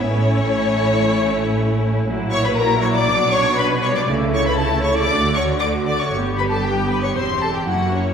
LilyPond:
<<
  \new Staff \with { instrumentName = "Violin section" } { \time 4/4 \key a \mixolydian \tempo 4 = 118 cis''1 | \key b \minor r8 cis'''16 b''16 ais''8 cis'''16 d'''8. cis'''8 b''8 cis'''16 d'''16 | r8 cis'''16 b''16 a''8 cis'''16 d'''8. cis'''8 d'''8 d'''16 cis'''16 | r8 b''16 a''16 g''8 b''16 cis'''16 c'''8 a''16 g''16 fis''8 cis''8 | }
  \new Staff \with { instrumentName = "Violin section" } { \time 4/4 \key a \mixolydian cis'1 | \key b \minor r8 cis''16 b'16 ais'8 cis''16 d''8. cis''8 b'8 cis''16 d''16 | r8 cis''16 b'16 a'8 cis''16 d''8. cis''8 d''8 d''16 cis''16 | r8 b'16 a'16 g'8 b'16 cis''16 c''8 a'16 g'16 fis'8 cis'8 | }
  \new Staff \with { instrumentName = "Viola section" } { \time 4/4 \key a \mixolydian << { e'1 | \key b \minor e'4 e'4 d'4 d'4 | e'4 e'4 fis'4 fis'4 | g'4 g'4 g'4 e'4 | } \\ { a1 | fis4 fis4 fis4 fis8 g8 | a4 a4 a4 a4 | b4 b4 c'4 ais4 | } >> }
  \new Staff \with { instrumentName = "Cello section" } { \clef bass \time 4/4 \key a \mixolydian a,1 | \key b \minor ais,2 b,2 | cis2 d2 | g,2 e,4 fis,4 | }
  \new Staff \with { instrumentName = "Double bass section" } { \clef bass \time 4/4 \key a \mixolydian a,,1 | \key b \minor ais,,2 b,,2 | cis,2 d,2 | g,,2 e,,4 fis,,4 | }
>>